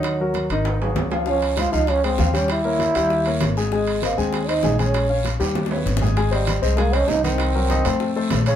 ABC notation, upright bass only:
X:1
M:4/4
L:1/8
Q:1/4=196
K:Ab
V:1 name="Upright bass" clef=bass
E,,3 A,,,3 D,,2- | D,,3 D,,3 E,,2- | E,,3 E,,3 A,,,2- | A,,,3 E,,3 B,,,2- |
B,,,3 E,,3 A,,,2- | A,,,3 C,,3 C,,2- | C,,3 F,,3 B,,,2 |]